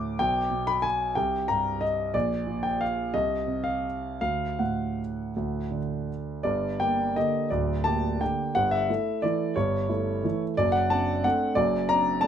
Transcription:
Already playing: D2 A2 D6
0.19 B1 G5
0.50 B2
0.67 B5
0.82 G#5
1.15 C2 G5
1.48 G2 A#5
1.81 D#5
2.14 A#1 D5
2.47 A#2
2.63 G5
2.81 F5
3.14 C2 D#5
3.47 C3
3.64 F5
4.21 D2 F5
4.59 A2 F#5
5.36 D2
5.71 D3
6.43 G1 G2 D5
6.80 A#3 G4 G5
7.16 D3 A#3 G4 D#5
7.50 D1 D2 D5
7.84 A#3 G4 A5
8.21 D3 A#3 G4 G5
8.55 G1 G2 F#5
8.71 E5
8.89 A3 E4
9.22 E3 A3 E4 D5
9.56 G1 G2 C#5
9.89 A3 E4
10.23 E3 A3 E4
10.57 F#1 F#2 D5
10.72 F#5
10.90 C4 D4 A5
11.24 A3 C4 D4 F#5
11.55 F#1 F#2 D5
11.89 C4 D4 A#5
12.21 A3 C4 D4 A5

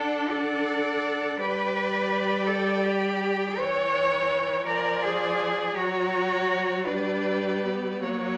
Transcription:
Already playing: D4 A4 F#5
0.30 A4 D5 F#5
1.40 G3 B4 D5 G5
2.46 A4
2.84 G4
3.59 E3 C#5
4.66 F3 A#4 D5 G#5
5.02 G#4
5.76 F#3 F#4 C#5 A#5
6.86 G3 D4 B4 D5
7.63 B3
8.03 F#3 A#3 C#5 F#5

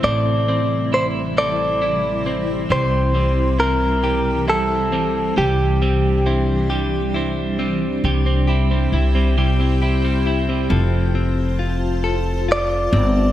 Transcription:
Already playing: C3 E3 C4 E4
0.03 A1 A2 G3 C4 A4 D5
0.48 C4
0.93 E4 C5
1.37 C4 A4 D5
1.82 E4
2.26 C4
2.69 C2 C3 G3 G4 C5
3.15 G3 C4
3.59 C4 E4 A#4
4.04 G3 G4
4.48 C4 E4 A4
4.92 G3 C4
5.36 C2 C3 G3 D4 G4
5.82 G3 C4
6.26 C4 E4
6.70 G3 G4
7.14 C4 E4
7.59 G3 C4
8.02 C2 C3 G3 E4 G4 C5 G5
8.26 C4
8.48 E4 G4
8.71 G3 C4
8.92 C2 E4
9.15 G3 C4
9.38 C3 G3 G4
9.60 C4
9.82 E4 G4
10.04 G3 C4
10.26 E4
10.49 G3 C4
10.70 F1 F3 F4 A4 C5 A5
11.15 C4
11.59 F4
12.04 A4
12.48 F4 D5
12.93 G1 C4

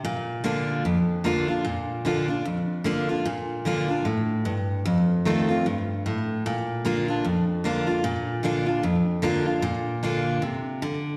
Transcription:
0.05 A#2
0.44 D3 A#3 D4 F4
0.85 F2
1.24 D3 A#3 D4 F4
1.48 D4 F4
1.65 A#2
2.05 D3 A#3 D4 F4
2.28 D4 F4
2.45 F2
2.84 D3 A#3 D4 F4
3.09 D4 F4
3.26 A#2
3.65 D3 A#3 D4 F4
3.88 D4 F4
4.05 A2
4.45 G2
4.85 F2
5.25 D#3 A3 C4 F4
5.49 C4 F4
5.66 G2
6.06 A2
6.46 A#2
6.85 D3 A#3 D4 F4
7.08 D4 F4
7.25 F2
7.64 D3 A#3 D4 F4
7.87 D4 F4
8.04 A#2
8.43 D3 A#3 D4 F4
8.66 D4 F4
8.83 F2
9.22 D3 A#3 D4 F4
9.46 D4 F4
9.62 A#2
10.03 D3 A#3 D4 F4
10.42 C3
10.82 D3

